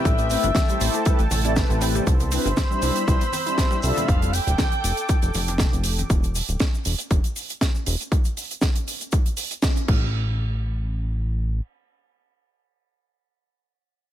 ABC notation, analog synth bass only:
X:1
M:4/4
L:1/16
Q:"Swing 16ths" 1/4=119
K:Flyd
V:1 name="Analog synth bass" clef=bass
A,,,2 z G,,, z2 A,,, z2 A,,, A,,,2 z A,,,2 z | C,,2 z G,,, z2 C,, z C,, z4 z C,, z | F,,,2 z D,,, z2 F,,, z2 F,,, F,,,2 z F,,,2 z | E,,,2 z D,,, z2 E,,, z E,,, z4 z E,,, z |
z12 z2 A,,,2- | A,,,12 z4 | z16 |]